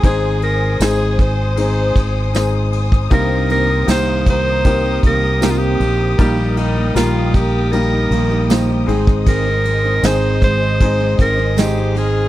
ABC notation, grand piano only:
X:1
M:4/4
L:1/8
Q:1/4=78
K:Ab
V:1 name="Grand piano"
[A,CEAc]2 [A,CEAc]2 [A,CEAc]2 [A,CEAc]2 | [B,CEGB]2 [B,CEGB]2 [B,CEGB]2 [B,CEGB]2 | [G,B,EGB]2 [G,B,EGB]2 [G,B,EGB]2 [G,B,EGc] [A,CEAc]- | [A,CEAc]2 [A,CEAc]2 [A,CEAc]2 [A,CEce]2 |]
V:2 name="Grand piano" clef=bass
z8 | G,,3 z4 z | B,,3 z4 z | z8 |]